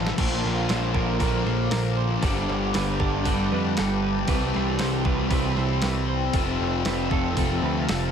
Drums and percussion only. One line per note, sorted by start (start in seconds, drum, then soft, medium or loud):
0.07 snare medium
0.18 kick loud
0.18 open hi-hat medium
0.18 crash loud
0.69 snare loud
0.69 open hi-hat medium
0.95 kick medium
1.20 kick medium
1.20 open hi-hat medium
1.47 snare soft
1.71 snare loud
1.71 open hi-hat medium
2.23 kick loud
2.23 open hi-hat medium
2.50 snare soft
2.74 snare loud
2.74 open hi-hat medium
3.00 kick medium
3.25 kick medium
3.25 open hi-hat medium
3.77 snare loud
3.77 open hi-hat medium
4.28 kick loud
4.28 open hi-hat medium
4.54 snare soft
4.79 snare medium
4.79 open hi-hat medium
5.05 kick medium
5.31 kick medium
5.31 open hi-hat medium
5.57 snare soft
5.82 snare loud
5.82 open hi-hat medium
6.33 kick loud
6.33 open hi-hat medium
6.85 snare loud
6.85 open hi-hat medium
7.11 kick medium
7.37 kick medium
7.37 open hi-hat medium
7.89 snare loud
7.89 open hi-hat medium